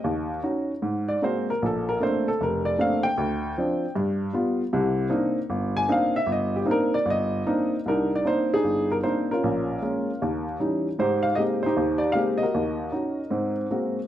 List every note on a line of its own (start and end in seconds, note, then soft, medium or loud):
0.00 0.28 D#5 medium
0.04 0.38 D#2 medium
0.43 0.71 C#4 soft
0.43 0.71 D#4 soft
0.43 0.71 F#4 medium
0.82 1.17 G#2 medium
1.08 1.22 D5 medium
1.22 1.50 G#3 soft
1.22 1.50 A#3 soft
1.22 1.50 C4 soft
1.22 1.50 F#4 medium
1.22 1.48 C5 medium
1.50 1.63 A#4 medium
1.62 1.96 A#1 medium
1.62 1.89 A4 medium
1.89 2.01 A#4 medium
2.00 2.28 A3 soft
2.00 2.28 A#3 soft
2.00 2.28 C4 soft
2.00 2.28 D4 medium
2.00 2.27 C5 medium
2.28 2.41 A4 medium
2.41 2.74 F1 medium
2.41 2.66 A#4 medium
2.65 2.79 D5 medium
2.79 3.06 A3 medium
2.79 3.06 A#3 soft
2.79 3.06 C4 soft
2.79 3.06 D4 medium
2.79 3.05 F5 medium
3.03 3.91 G5 medium
3.18 3.52 D2 medium
3.58 3.84 F3 soft
3.58 3.84 C4 soft
3.58 3.85 D4 medium
3.95 4.29 G2 medium
4.33 4.60 G3 medium
4.33 4.61 B3 soft
4.33 4.61 F4 medium
4.73 5.07 C2 medium
4.73 5.06 C3 medium
5.09 5.37 A#3 medium
5.09 5.37 C4 soft
5.09 5.38 D4 medium
5.09 5.38 D#4 medium
5.50 5.84 G1 medium
5.77 5.89 G#5 medium
5.89 6.16 A#3 medium
5.89 6.16 C4 soft
5.89 6.16 D4 medium
5.89 6.16 D#4 medium
5.89 6.16 F5 medium
6.16 6.29 E5 medium
6.26 6.61 G1 medium
6.32 6.55 D#5 medium
6.56 6.68 G4 medium
6.65 6.94 A#3 medium
6.65 6.94 C4 soft
6.65 6.94 D4 soft
6.65 6.94 D#4 medium
6.71 6.95 A#4 medium
6.94 7.07 D5 medium
7.05 7.41 G1 medium
7.10 7.78 D#5 medium
7.46 7.75 A#3 medium
7.46 7.75 C4 soft
7.46 7.75 D4 medium
7.46 7.75 D#4 medium
7.86 8.21 C2 medium
7.86 8.24 D4 medium
7.86 8.24 D#4 medium
7.86 8.12 A#4 medium
8.15 8.27 D5 medium
8.25 8.53 A#3 soft
8.25 8.53 C4 soft
8.25 8.53 D4 soft
8.25 8.53 D#4 soft
8.25 8.54 C5 medium
8.54 9.02 D4 medium
8.54 9.04 D#4 medium
8.54 8.90 G#4 medium
8.64 8.99 G1 medium
8.92 8.97 A#4 medium
9.04 9.31 A#3 soft
9.04 9.32 C4 soft
9.04 9.32 D4 soft
9.04 9.32 D#4 soft
9.04 9.31 C5 medium
9.31 9.81 C#4 medium
9.31 10.19 F4 medium
9.31 10.44 A#4 medium
9.44 9.78 A#1 medium
9.82 10.09 G#3 soft
9.82 10.10 A#3 soft
9.82 10.10 C#4 medium
10.22 10.55 D#2 medium
10.60 10.87 E3 soft
10.60 10.87 G3 soft
10.60 10.87 C#4 soft
10.60 10.87 D#4 medium
10.99 11.33 G#2 medium
10.99 11.65 D#4 medium
10.99 11.36 G4 medium
10.99 11.26 C5 medium
11.23 11.36 F5 medium
11.35 11.65 G#3 soft
11.35 11.65 A#3 soft
11.35 11.65 C4 soft
11.35 11.65 G4 medium
11.35 11.41 D#5 medium
11.63 12.38 D#4 medium
11.63 12.15 G4 medium
11.63 11.99 C5 medium
11.77 12.10 D#2 medium
11.98 12.13 D5 medium
12.12 12.42 G#3 soft
12.12 12.42 A#3 soft
12.12 12.42 C4 soft
12.12 12.18 F5 medium
12.17 12.43 G4 medium
12.38 13.52 D#5 medium
12.42 12.91 F#4 medium
12.42 13.55 A#4 medium
12.54 12.88 D#2 medium
12.92 13.19 C#4 soft
12.92 13.19 D#4 soft
12.92 13.20 F#4 soft
13.30 13.65 G#2 medium
13.30 13.66 C4 medium
13.71 13.99 G#3 soft
13.71 13.99 A#3 soft
13.71 13.99 C4 soft
13.71 13.99 F#4 soft